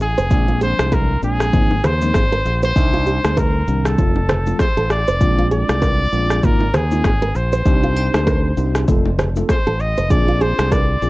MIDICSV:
0, 0, Header, 1, 6, 480
1, 0, Start_track
1, 0, Tempo, 612245
1, 241, Time_signature, 4, 2, 24, 8
1, 8699, End_track
2, 0, Start_track
2, 0, Title_t, "Trumpet"
2, 0, Program_c, 0, 56
2, 16, Note_on_c, 0, 68, 105
2, 457, Note_off_c, 0, 68, 0
2, 496, Note_on_c, 0, 72, 113
2, 736, Note_on_c, 0, 70, 99
2, 748, Note_off_c, 0, 72, 0
2, 969, Note_off_c, 0, 70, 0
2, 976, Note_on_c, 0, 68, 104
2, 1456, Note_on_c, 0, 72, 118
2, 1468, Note_off_c, 0, 68, 0
2, 2068, Note_off_c, 0, 72, 0
2, 2074, Note_on_c, 0, 72, 111
2, 2617, Note_off_c, 0, 72, 0
2, 2655, Note_on_c, 0, 70, 93
2, 3033, Note_on_c, 0, 69, 82
2, 3045, Note_off_c, 0, 70, 0
2, 3608, Note_off_c, 0, 69, 0
2, 3614, Note_on_c, 0, 72, 102
2, 3832, Note_off_c, 0, 72, 0
2, 3854, Note_on_c, 0, 74, 113
2, 4296, Note_off_c, 0, 74, 0
2, 4335, Note_on_c, 0, 74, 124
2, 5054, Note_on_c, 0, 70, 103
2, 5066, Note_off_c, 0, 74, 0
2, 5296, Note_on_c, 0, 68, 105
2, 5308, Note_off_c, 0, 70, 0
2, 5773, Note_on_c, 0, 72, 105
2, 5785, Note_off_c, 0, 68, 0
2, 7207, Note_off_c, 0, 72, 0
2, 7452, Note_on_c, 0, 72, 103
2, 7689, Note_on_c, 0, 75, 111
2, 7701, Note_off_c, 0, 72, 0
2, 7928, Note_on_c, 0, 74, 114
2, 7940, Note_off_c, 0, 75, 0
2, 8166, Note_on_c, 0, 72, 102
2, 8178, Note_off_c, 0, 74, 0
2, 8406, Note_on_c, 0, 74, 111
2, 8418, Note_off_c, 0, 72, 0
2, 8699, Note_off_c, 0, 74, 0
2, 8699, End_track
3, 0, Start_track
3, 0, Title_t, "Nylon-string guitar"
3, 0, Program_c, 1, 24
3, 140, Note_on_c, 1, 72, 79
3, 197, Note_off_c, 1, 72, 0
3, 379, Note_on_c, 1, 65, 77
3, 437, Note_off_c, 1, 65, 0
3, 481, Note_on_c, 1, 68, 75
3, 559, Note_off_c, 1, 68, 0
3, 721, Note_on_c, 1, 70, 80
3, 857, Note_off_c, 1, 70, 0
3, 1442, Note_on_c, 1, 72, 76
3, 1520, Note_off_c, 1, 72, 0
3, 1822, Note_on_c, 1, 70, 78
3, 1878, Note_off_c, 1, 70, 0
3, 2062, Note_on_c, 1, 72, 79
3, 2118, Note_off_c, 1, 72, 0
3, 2301, Note_on_c, 1, 65, 77
3, 2358, Note_off_c, 1, 65, 0
3, 2402, Note_on_c, 1, 67, 74
3, 2480, Note_off_c, 1, 67, 0
3, 2641, Note_on_c, 1, 70, 81
3, 2777, Note_off_c, 1, 70, 0
3, 3362, Note_on_c, 1, 72, 75
3, 3440, Note_off_c, 1, 72, 0
3, 3741, Note_on_c, 1, 69, 75
3, 3798, Note_off_c, 1, 69, 0
3, 3982, Note_on_c, 1, 72, 81
3, 4039, Note_off_c, 1, 72, 0
3, 4221, Note_on_c, 1, 65, 80
3, 4278, Note_off_c, 1, 65, 0
3, 4322, Note_on_c, 1, 68, 77
3, 4400, Note_off_c, 1, 68, 0
3, 4561, Note_on_c, 1, 70, 81
3, 4697, Note_off_c, 1, 70, 0
3, 5283, Note_on_c, 1, 72, 75
3, 5361, Note_off_c, 1, 72, 0
3, 5661, Note_on_c, 1, 70, 78
3, 5718, Note_off_c, 1, 70, 0
3, 5902, Note_on_c, 1, 72, 80
3, 5959, Note_off_c, 1, 72, 0
3, 6142, Note_on_c, 1, 65, 81
3, 6243, Note_off_c, 1, 65, 0
3, 6243, Note_on_c, 1, 67, 76
3, 6321, Note_off_c, 1, 67, 0
3, 6482, Note_on_c, 1, 70, 84
3, 6617, Note_off_c, 1, 70, 0
3, 7202, Note_on_c, 1, 72, 81
3, 7280, Note_off_c, 1, 72, 0
3, 7581, Note_on_c, 1, 69, 82
3, 7638, Note_off_c, 1, 69, 0
3, 7821, Note_on_c, 1, 72, 81
3, 7878, Note_off_c, 1, 72, 0
3, 8061, Note_on_c, 1, 65, 75
3, 8118, Note_off_c, 1, 65, 0
3, 8162, Note_on_c, 1, 68, 78
3, 8241, Note_off_c, 1, 68, 0
3, 8402, Note_on_c, 1, 70, 81
3, 8537, Note_off_c, 1, 70, 0
3, 8699, End_track
4, 0, Start_track
4, 0, Title_t, "Tine electric piano"
4, 0, Program_c, 2, 4
4, 239, Note_on_c, 2, 53, 94
4, 240, Note_on_c, 2, 56, 86
4, 241, Note_on_c, 2, 60, 85
4, 243, Note_on_c, 2, 62, 101
4, 912, Note_off_c, 2, 53, 0
4, 912, Note_off_c, 2, 56, 0
4, 913, Note_off_c, 2, 60, 0
4, 914, Note_off_c, 2, 62, 0
4, 959, Note_on_c, 2, 53, 73
4, 961, Note_on_c, 2, 56, 67
4, 963, Note_on_c, 2, 60, 70
4, 964, Note_on_c, 2, 62, 83
4, 1185, Note_off_c, 2, 53, 0
4, 1185, Note_off_c, 2, 56, 0
4, 1186, Note_off_c, 2, 60, 0
4, 1187, Note_off_c, 2, 62, 0
4, 1199, Note_on_c, 2, 53, 87
4, 1201, Note_on_c, 2, 58, 76
4, 1203, Note_on_c, 2, 60, 77
4, 1204, Note_on_c, 2, 63, 94
4, 1368, Note_off_c, 2, 53, 0
4, 1369, Note_off_c, 2, 58, 0
4, 1370, Note_off_c, 2, 60, 0
4, 1370, Note_off_c, 2, 63, 0
4, 1578, Note_on_c, 2, 53, 77
4, 1579, Note_on_c, 2, 58, 71
4, 1581, Note_on_c, 2, 60, 72
4, 1582, Note_on_c, 2, 63, 89
4, 1719, Note_off_c, 2, 53, 0
4, 1720, Note_off_c, 2, 58, 0
4, 1721, Note_off_c, 2, 60, 0
4, 1721, Note_off_c, 2, 63, 0
4, 2161, Note_on_c, 2, 63, 94
4, 2163, Note_on_c, 2, 55, 80
4, 2165, Note_on_c, 2, 60, 82
4, 2166, Note_on_c, 2, 62, 101
4, 2833, Note_off_c, 2, 63, 0
4, 2834, Note_off_c, 2, 55, 0
4, 2835, Note_off_c, 2, 60, 0
4, 2836, Note_off_c, 2, 62, 0
4, 2881, Note_on_c, 2, 51, 74
4, 2882, Note_on_c, 2, 55, 69
4, 2884, Note_on_c, 2, 60, 68
4, 2885, Note_on_c, 2, 62, 81
4, 3105, Note_off_c, 2, 51, 0
4, 3106, Note_off_c, 2, 55, 0
4, 3107, Note_off_c, 2, 60, 0
4, 3107, Note_off_c, 2, 62, 0
4, 3121, Note_on_c, 2, 53, 84
4, 3122, Note_on_c, 2, 57, 78
4, 3123, Note_on_c, 2, 60, 80
4, 3125, Note_on_c, 2, 65, 96
4, 3289, Note_off_c, 2, 53, 0
4, 3289, Note_off_c, 2, 57, 0
4, 3290, Note_off_c, 2, 60, 0
4, 3291, Note_off_c, 2, 65, 0
4, 3499, Note_on_c, 2, 53, 76
4, 3501, Note_on_c, 2, 57, 69
4, 3503, Note_on_c, 2, 60, 70
4, 3505, Note_on_c, 2, 65, 84
4, 3640, Note_off_c, 2, 53, 0
4, 3641, Note_off_c, 2, 57, 0
4, 3642, Note_off_c, 2, 60, 0
4, 3643, Note_off_c, 2, 65, 0
4, 4082, Note_on_c, 2, 56, 89
4, 4083, Note_on_c, 2, 60, 87
4, 4085, Note_on_c, 2, 62, 85
4, 4086, Note_on_c, 2, 65, 99
4, 4754, Note_off_c, 2, 56, 0
4, 4754, Note_off_c, 2, 60, 0
4, 4755, Note_off_c, 2, 62, 0
4, 4755, Note_off_c, 2, 65, 0
4, 4800, Note_on_c, 2, 56, 77
4, 4802, Note_on_c, 2, 60, 68
4, 4802, Note_on_c, 2, 62, 71
4, 4804, Note_on_c, 2, 65, 88
4, 5025, Note_off_c, 2, 56, 0
4, 5026, Note_off_c, 2, 60, 0
4, 5026, Note_off_c, 2, 62, 0
4, 5027, Note_off_c, 2, 65, 0
4, 5041, Note_on_c, 2, 58, 89
4, 5042, Note_on_c, 2, 60, 84
4, 5043, Note_on_c, 2, 63, 81
4, 5045, Note_on_c, 2, 65, 94
4, 5209, Note_off_c, 2, 58, 0
4, 5210, Note_off_c, 2, 60, 0
4, 5210, Note_off_c, 2, 63, 0
4, 5211, Note_off_c, 2, 65, 0
4, 5419, Note_on_c, 2, 58, 76
4, 5421, Note_on_c, 2, 60, 72
4, 5423, Note_on_c, 2, 63, 73
4, 5424, Note_on_c, 2, 65, 86
4, 5560, Note_off_c, 2, 58, 0
4, 5561, Note_off_c, 2, 60, 0
4, 5562, Note_off_c, 2, 63, 0
4, 5562, Note_off_c, 2, 65, 0
4, 6001, Note_on_c, 2, 60, 91
4, 6003, Note_on_c, 2, 62, 87
4, 6005, Note_on_c, 2, 63, 86
4, 6006, Note_on_c, 2, 67, 102
4, 6673, Note_off_c, 2, 60, 0
4, 6674, Note_off_c, 2, 62, 0
4, 6675, Note_off_c, 2, 63, 0
4, 6676, Note_off_c, 2, 67, 0
4, 6719, Note_on_c, 2, 60, 78
4, 6721, Note_on_c, 2, 62, 69
4, 6722, Note_on_c, 2, 63, 68
4, 6724, Note_on_c, 2, 67, 81
4, 6944, Note_off_c, 2, 60, 0
4, 6945, Note_off_c, 2, 62, 0
4, 6946, Note_off_c, 2, 63, 0
4, 6947, Note_off_c, 2, 67, 0
4, 6959, Note_on_c, 2, 57, 88
4, 6960, Note_on_c, 2, 60, 81
4, 6963, Note_on_c, 2, 65, 84
4, 6963, Note_on_c, 2, 69, 97
4, 7128, Note_off_c, 2, 57, 0
4, 7128, Note_off_c, 2, 60, 0
4, 7130, Note_off_c, 2, 65, 0
4, 7130, Note_off_c, 2, 69, 0
4, 7338, Note_on_c, 2, 57, 80
4, 7340, Note_on_c, 2, 60, 71
4, 7341, Note_on_c, 2, 65, 74
4, 7343, Note_on_c, 2, 69, 87
4, 7479, Note_off_c, 2, 57, 0
4, 7480, Note_off_c, 2, 60, 0
4, 7481, Note_off_c, 2, 65, 0
4, 7482, Note_off_c, 2, 69, 0
4, 7917, Note_on_c, 2, 60, 93
4, 7920, Note_on_c, 2, 62, 87
4, 7921, Note_on_c, 2, 65, 84
4, 7923, Note_on_c, 2, 68, 106
4, 8591, Note_off_c, 2, 60, 0
4, 8592, Note_off_c, 2, 62, 0
4, 8593, Note_off_c, 2, 65, 0
4, 8594, Note_off_c, 2, 68, 0
4, 8637, Note_on_c, 2, 60, 79
4, 8639, Note_on_c, 2, 62, 70
4, 8641, Note_on_c, 2, 65, 72
4, 8643, Note_on_c, 2, 68, 89
4, 8699, Note_off_c, 2, 60, 0
4, 8699, Note_off_c, 2, 62, 0
4, 8699, Note_off_c, 2, 65, 0
4, 8699, Note_off_c, 2, 68, 0
4, 8699, End_track
5, 0, Start_track
5, 0, Title_t, "Fingered electric bass"
5, 0, Program_c, 3, 33
5, 0, Note_on_c, 3, 33, 91
5, 111, Note_off_c, 3, 33, 0
5, 141, Note_on_c, 3, 29, 89
5, 229, Note_off_c, 3, 29, 0
5, 242, Note_on_c, 3, 34, 109
5, 574, Note_off_c, 3, 34, 0
5, 621, Note_on_c, 3, 36, 87
5, 920, Note_off_c, 3, 36, 0
5, 962, Note_on_c, 3, 34, 81
5, 1172, Note_off_c, 3, 34, 0
5, 1202, Note_on_c, 3, 32, 100
5, 1412, Note_off_c, 3, 32, 0
5, 1443, Note_on_c, 3, 39, 91
5, 1653, Note_off_c, 3, 39, 0
5, 1683, Note_on_c, 3, 32, 91
5, 1892, Note_off_c, 3, 32, 0
5, 1923, Note_on_c, 3, 34, 92
5, 2133, Note_off_c, 3, 34, 0
5, 2163, Note_on_c, 3, 36, 104
5, 2494, Note_off_c, 3, 36, 0
5, 2543, Note_on_c, 3, 38, 82
5, 2841, Note_off_c, 3, 38, 0
5, 2884, Note_on_c, 3, 36, 93
5, 3093, Note_off_c, 3, 36, 0
5, 3124, Note_on_c, 3, 29, 101
5, 3543, Note_off_c, 3, 29, 0
5, 3741, Note_on_c, 3, 33, 86
5, 3951, Note_off_c, 3, 33, 0
5, 3982, Note_on_c, 3, 29, 83
5, 4070, Note_off_c, 3, 29, 0
5, 4083, Note_on_c, 3, 34, 102
5, 4414, Note_off_c, 3, 34, 0
5, 4462, Note_on_c, 3, 36, 84
5, 4760, Note_off_c, 3, 36, 0
5, 4803, Note_on_c, 3, 34, 82
5, 5012, Note_off_c, 3, 34, 0
5, 5042, Note_on_c, 3, 32, 98
5, 5252, Note_off_c, 3, 32, 0
5, 5282, Note_on_c, 3, 39, 93
5, 5492, Note_off_c, 3, 39, 0
5, 5523, Note_on_c, 3, 32, 97
5, 5732, Note_off_c, 3, 32, 0
5, 5761, Note_on_c, 3, 34, 91
5, 5972, Note_off_c, 3, 34, 0
5, 6002, Note_on_c, 3, 36, 106
5, 6334, Note_off_c, 3, 36, 0
5, 6381, Note_on_c, 3, 38, 83
5, 6679, Note_off_c, 3, 38, 0
5, 6721, Note_on_c, 3, 36, 97
5, 6932, Note_off_c, 3, 36, 0
5, 6962, Note_on_c, 3, 29, 109
5, 7382, Note_off_c, 3, 29, 0
5, 7580, Note_on_c, 3, 33, 88
5, 7791, Note_off_c, 3, 33, 0
5, 7820, Note_on_c, 3, 29, 87
5, 7909, Note_off_c, 3, 29, 0
5, 7921, Note_on_c, 3, 34, 113
5, 8253, Note_off_c, 3, 34, 0
5, 8300, Note_on_c, 3, 36, 87
5, 8599, Note_off_c, 3, 36, 0
5, 8642, Note_on_c, 3, 34, 86
5, 8699, Note_off_c, 3, 34, 0
5, 8699, End_track
6, 0, Start_track
6, 0, Title_t, "Drums"
6, 2, Note_on_c, 9, 82, 52
6, 8, Note_on_c, 9, 60, 53
6, 80, Note_off_c, 9, 82, 0
6, 86, Note_off_c, 9, 60, 0
6, 139, Note_on_c, 9, 82, 70
6, 217, Note_off_c, 9, 82, 0
6, 241, Note_on_c, 9, 82, 87
6, 242, Note_on_c, 9, 36, 113
6, 246, Note_on_c, 9, 64, 74
6, 320, Note_off_c, 9, 36, 0
6, 320, Note_off_c, 9, 82, 0
6, 324, Note_off_c, 9, 64, 0
6, 481, Note_on_c, 9, 82, 51
6, 560, Note_off_c, 9, 82, 0
6, 622, Note_on_c, 9, 37, 109
6, 622, Note_on_c, 9, 82, 76
6, 625, Note_on_c, 9, 61, 75
6, 700, Note_off_c, 9, 82, 0
6, 701, Note_off_c, 9, 37, 0
6, 703, Note_off_c, 9, 61, 0
6, 722, Note_on_c, 9, 36, 91
6, 724, Note_on_c, 9, 82, 76
6, 726, Note_on_c, 9, 60, 83
6, 801, Note_off_c, 9, 36, 0
6, 802, Note_off_c, 9, 82, 0
6, 805, Note_off_c, 9, 60, 0
6, 961, Note_on_c, 9, 82, 52
6, 1039, Note_off_c, 9, 82, 0
6, 1100, Note_on_c, 9, 37, 96
6, 1102, Note_on_c, 9, 82, 82
6, 1178, Note_off_c, 9, 37, 0
6, 1180, Note_off_c, 9, 82, 0
6, 1201, Note_on_c, 9, 82, 73
6, 1202, Note_on_c, 9, 36, 110
6, 1204, Note_on_c, 9, 64, 75
6, 1279, Note_off_c, 9, 82, 0
6, 1281, Note_off_c, 9, 36, 0
6, 1282, Note_off_c, 9, 64, 0
6, 1340, Note_on_c, 9, 61, 78
6, 1418, Note_off_c, 9, 61, 0
6, 1443, Note_on_c, 9, 64, 82
6, 1443, Note_on_c, 9, 82, 56
6, 1445, Note_on_c, 9, 37, 90
6, 1522, Note_off_c, 9, 64, 0
6, 1522, Note_off_c, 9, 82, 0
6, 1523, Note_off_c, 9, 37, 0
6, 1579, Note_on_c, 9, 82, 76
6, 1587, Note_on_c, 9, 61, 76
6, 1657, Note_off_c, 9, 82, 0
6, 1665, Note_off_c, 9, 61, 0
6, 1680, Note_on_c, 9, 37, 92
6, 1683, Note_on_c, 9, 36, 90
6, 1684, Note_on_c, 9, 82, 84
6, 1688, Note_on_c, 9, 60, 75
6, 1758, Note_off_c, 9, 37, 0
6, 1761, Note_off_c, 9, 36, 0
6, 1762, Note_off_c, 9, 82, 0
6, 1767, Note_off_c, 9, 60, 0
6, 1923, Note_on_c, 9, 82, 51
6, 1929, Note_on_c, 9, 60, 51
6, 2001, Note_off_c, 9, 82, 0
6, 2007, Note_off_c, 9, 60, 0
6, 2059, Note_on_c, 9, 82, 72
6, 2137, Note_off_c, 9, 82, 0
6, 2163, Note_on_c, 9, 36, 111
6, 2163, Note_on_c, 9, 82, 83
6, 2166, Note_on_c, 9, 64, 70
6, 2241, Note_off_c, 9, 36, 0
6, 2241, Note_off_c, 9, 82, 0
6, 2245, Note_off_c, 9, 64, 0
6, 2402, Note_on_c, 9, 82, 48
6, 2481, Note_off_c, 9, 82, 0
6, 2544, Note_on_c, 9, 82, 71
6, 2545, Note_on_c, 9, 37, 114
6, 2545, Note_on_c, 9, 61, 73
6, 2622, Note_off_c, 9, 82, 0
6, 2623, Note_off_c, 9, 37, 0
6, 2623, Note_off_c, 9, 61, 0
6, 2644, Note_on_c, 9, 36, 94
6, 2646, Note_on_c, 9, 60, 83
6, 2646, Note_on_c, 9, 82, 76
6, 2722, Note_off_c, 9, 36, 0
6, 2724, Note_off_c, 9, 82, 0
6, 2725, Note_off_c, 9, 60, 0
6, 2883, Note_on_c, 9, 82, 53
6, 2961, Note_off_c, 9, 82, 0
6, 3021, Note_on_c, 9, 37, 95
6, 3023, Note_on_c, 9, 82, 87
6, 3099, Note_off_c, 9, 37, 0
6, 3101, Note_off_c, 9, 82, 0
6, 3122, Note_on_c, 9, 82, 76
6, 3123, Note_on_c, 9, 36, 105
6, 3124, Note_on_c, 9, 64, 76
6, 3201, Note_off_c, 9, 82, 0
6, 3202, Note_off_c, 9, 36, 0
6, 3203, Note_off_c, 9, 64, 0
6, 3259, Note_on_c, 9, 61, 79
6, 3338, Note_off_c, 9, 61, 0
6, 3362, Note_on_c, 9, 64, 84
6, 3365, Note_on_c, 9, 82, 57
6, 3366, Note_on_c, 9, 37, 96
6, 3440, Note_off_c, 9, 64, 0
6, 3443, Note_off_c, 9, 82, 0
6, 3444, Note_off_c, 9, 37, 0
6, 3501, Note_on_c, 9, 82, 70
6, 3506, Note_on_c, 9, 61, 74
6, 3579, Note_off_c, 9, 82, 0
6, 3584, Note_off_c, 9, 61, 0
6, 3600, Note_on_c, 9, 37, 90
6, 3603, Note_on_c, 9, 36, 88
6, 3605, Note_on_c, 9, 82, 84
6, 3607, Note_on_c, 9, 60, 78
6, 3679, Note_off_c, 9, 37, 0
6, 3682, Note_off_c, 9, 36, 0
6, 3683, Note_off_c, 9, 82, 0
6, 3685, Note_off_c, 9, 60, 0
6, 3843, Note_on_c, 9, 37, 93
6, 3843, Note_on_c, 9, 82, 49
6, 3847, Note_on_c, 9, 60, 54
6, 3921, Note_off_c, 9, 37, 0
6, 3921, Note_off_c, 9, 82, 0
6, 3925, Note_off_c, 9, 60, 0
6, 3980, Note_on_c, 9, 82, 69
6, 4058, Note_off_c, 9, 82, 0
6, 4083, Note_on_c, 9, 36, 114
6, 4083, Note_on_c, 9, 82, 85
6, 4086, Note_on_c, 9, 64, 76
6, 4161, Note_off_c, 9, 36, 0
6, 4161, Note_off_c, 9, 82, 0
6, 4165, Note_off_c, 9, 64, 0
6, 4322, Note_on_c, 9, 82, 50
6, 4401, Note_off_c, 9, 82, 0
6, 4463, Note_on_c, 9, 37, 111
6, 4463, Note_on_c, 9, 82, 75
6, 4466, Note_on_c, 9, 61, 77
6, 4541, Note_off_c, 9, 82, 0
6, 4542, Note_off_c, 9, 37, 0
6, 4544, Note_off_c, 9, 61, 0
6, 4563, Note_on_c, 9, 36, 94
6, 4566, Note_on_c, 9, 60, 86
6, 4566, Note_on_c, 9, 82, 79
6, 4642, Note_off_c, 9, 36, 0
6, 4644, Note_off_c, 9, 60, 0
6, 4644, Note_off_c, 9, 82, 0
6, 4802, Note_on_c, 9, 82, 54
6, 4880, Note_off_c, 9, 82, 0
6, 4941, Note_on_c, 9, 37, 98
6, 4943, Note_on_c, 9, 82, 82
6, 5019, Note_off_c, 9, 37, 0
6, 5021, Note_off_c, 9, 82, 0
6, 5042, Note_on_c, 9, 36, 108
6, 5042, Note_on_c, 9, 82, 76
6, 5043, Note_on_c, 9, 64, 79
6, 5120, Note_off_c, 9, 82, 0
6, 5121, Note_off_c, 9, 36, 0
6, 5121, Note_off_c, 9, 64, 0
6, 5178, Note_on_c, 9, 61, 79
6, 5256, Note_off_c, 9, 61, 0
6, 5282, Note_on_c, 9, 64, 82
6, 5284, Note_on_c, 9, 82, 58
6, 5286, Note_on_c, 9, 37, 95
6, 5360, Note_off_c, 9, 64, 0
6, 5363, Note_off_c, 9, 82, 0
6, 5364, Note_off_c, 9, 37, 0
6, 5420, Note_on_c, 9, 82, 75
6, 5426, Note_on_c, 9, 61, 74
6, 5498, Note_off_c, 9, 82, 0
6, 5504, Note_off_c, 9, 61, 0
6, 5521, Note_on_c, 9, 37, 96
6, 5523, Note_on_c, 9, 36, 88
6, 5525, Note_on_c, 9, 82, 83
6, 5529, Note_on_c, 9, 60, 77
6, 5599, Note_off_c, 9, 37, 0
6, 5601, Note_off_c, 9, 36, 0
6, 5603, Note_off_c, 9, 82, 0
6, 5607, Note_off_c, 9, 60, 0
6, 5764, Note_on_c, 9, 82, 52
6, 5842, Note_off_c, 9, 82, 0
6, 5900, Note_on_c, 9, 82, 75
6, 5978, Note_off_c, 9, 82, 0
6, 6002, Note_on_c, 9, 36, 114
6, 6002, Note_on_c, 9, 82, 82
6, 6008, Note_on_c, 9, 64, 72
6, 6081, Note_off_c, 9, 36, 0
6, 6081, Note_off_c, 9, 82, 0
6, 6086, Note_off_c, 9, 64, 0
6, 6242, Note_on_c, 9, 82, 48
6, 6320, Note_off_c, 9, 82, 0
6, 6383, Note_on_c, 9, 82, 72
6, 6384, Note_on_c, 9, 37, 113
6, 6387, Note_on_c, 9, 61, 77
6, 6461, Note_off_c, 9, 82, 0
6, 6462, Note_off_c, 9, 37, 0
6, 6465, Note_off_c, 9, 61, 0
6, 6483, Note_on_c, 9, 36, 92
6, 6485, Note_on_c, 9, 82, 77
6, 6488, Note_on_c, 9, 60, 85
6, 6561, Note_off_c, 9, 36, 0
6, 6563, Note_off_c, 9, 82, 0
6, 6566, Note_off_c, 9, 60, 0
6, 6722, Note_on_c, 9, 82, 52
6, 6800, Note_off_c, 9, 82, 0
6, 6860, Note_on_c, 9, 37, 96
6, 6862, Note_on_c, 9, 82, 89
6, 6938, Note_off_c, 9, 37, 0
6, 6941, Note_off_c, 9, 82, 0
6, 6962, Note_on_c, 9, 36, 108
6, 6962, Note_on_c, 9, 82, 75
6, 6963, Note_on_c, 9, 64, 83
6, 7040, Note_off_c, 9, 36, 0
6, 7040, Note_off_c, 9, 82, 0
6, 7042, Note_off_c, 9, 64, 0
6, 7098, Note_on_c, 9, 61, 80
6, 7177, Note_off_c, 9, 61, 0
6, 7201, Note_on_c, 9, 64, 84
6, 7204, Note_on_c, 9, 82, 59
6, 7205, Note_on_c, 9, 37, 94
6, 7279, Note_off_c, 9, 64, 0
6, 7282, Note_off_c, 9, 82, 0
6, 7284, Note_off_c, 9, 37, 0
6, 7338, Note_on_c, 9, 82, 74
6, 7345, Note_on_c, 9, 61, 78
6, 7417, Note_off_c, 9, 82, 0
6, 7423, Note_off_c, 9, 61, 0
6, 7439, Note_on_c, 9, 37, 92
6, 7442, Note_on_c, 9, 36, 92
6, 7443, Note_on_c, 9, 82, 86
6, 7448, Note_on_c, 9, 60, 75
6, 7517, Note_off_c, 9, 37, 0
6, 7520, Note_off_c, 9, 36, 0
6, 7522, Note_off_c, 9, 82, 0
6, 7526, Note_off_c, 9, 60, 0
6, 7682, Note_on_c, 9, 82, 53
6, 7760, Note_off_c, 9, 82, 0
6, 7819, Note_on_c, 9, 82, 75
6, 7897, Note_off_c, 9, 82, 0
6, 7921, Note_on_c, 9, 36, 118
6, 7921, Note_on_c, 9, 82, 83
6, 7927, Note_on_c, 9, 64, 74
6, 8000, Note_off_c, 9, 36, 0
6, 8000, Note_off_c, 9, 82, 0
6, 8005, Note_off_c, 9, 64, 0
6, 8160, Note_on_c, 9, 82, 51
6, 8239, Note_off_c, 9, 82, 0
6, 8302, Note_on_c, 9, 37, 110
6, 8302, Note_on_c, 9, 82, 75
6, 8304, Note_on_c, 9, 61, 77
6, 8380, Note_off_c, 9, 82, 0
6, 8381, Note_off_c, 9, 37, 0
6, 8383, Note_off_c, 9, 61, 0
6, 8402, Note_on_c, 9, 36, 98
6, 8404, Note_on_c, 9, 82, 77
6, 8405, Note_on_c, 9, 60, 86
6, 8480, Note_off_c, 9, 36, 0
6, 8482, Note_off_c, 9, 82, 0
6, 8483, Note_off_c, 9, 60, 0
6, 8641, Note_on_c, 9, 82, 50
6, 8699, Note_off_c, 9, 82, 0
6, 8699, End_track
0, 0, End_of_file